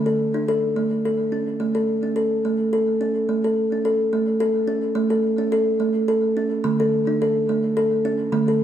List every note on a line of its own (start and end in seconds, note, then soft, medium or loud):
0.00 1.56 D3 medium
0.06 0.34 A4 medium
0.34 0.48 D4 medium
0.48 0.76 A4 medium
0.76 1.04 A3 medium
1.05 1.33 A4 medium
1.32 1.60 C#4 medium
1.60 1.75 A3 medium
1.75 2.03 A4 medium
2.03 2.16 C#4 medium
2.16 2.44 A4 medium
2.45 2.73 A3 medium
2.73 3.01 A4 medium
3.01 3.29 C#4 medium
3.29 4.12 A3 medium
3.44 3.72 A4 medium
3.72 3.85 C#4 medium
3.85 4.13 A4 medium
4.13 4.41 A3 medium
4.40 4.69 A4 medium
4.67 4.96 C#4 medium
4.95 5.11 A3 medium
5.10 5.39 A4 medium
5.38 5.52 C#4 medium
5.52 5.80 A4 medium
5.80 6.08 A3 medium
6.08 6.36 A4 medium
6.37 6.65 C#4 medium
6.64 8.29 D3 medium
6.64 6.79 A3 medium
6.80 7.07 A4 medium
7.07 7.20 D4 medium
7.22 7.49 A4 medium
7.49 7.77 A3 medium
7.77 8.04 A4 medium
8.05 8.33 C#4 medium
8.32 8.64 D3 medium
8.32 8.47 A3 medium
8.48 8.64 A4 medium